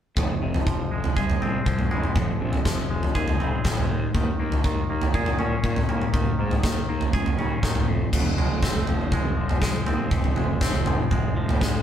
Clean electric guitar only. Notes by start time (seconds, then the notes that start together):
0.17 F2
0.42 C3
0.67 F3
0.91 G#3
1.16 G#4
1.42 C4
1.66 F3
1.91 G#3
2.16 F2
2.41 C3
2.65 F3
2.90 G#3
3.15 G#4
3.40 C4
3.65 F3
3.90 D#3
4.14 D#3
4.40 A#3
4.65 D#3
4.90 A#3
5.15 G#4
5.39 C#4
5.64 D#3
5.89 A#3
6.13 D#3
6.39 A#3
6.63 D#3
6.89 A#3
7.14 G#4
7.38 C#4
7.63 D#3
7.88 F2
8.13 F2
8.38 G#3
8.63 C4
8.88 F3
9.13 G#3
9.37 F3
9.62 G#3
9.87 C4
10.12 F2
10.36 G#3
10.61 C4
10.87 F3
11.11 G#3
11.36 F3
11.61 G#3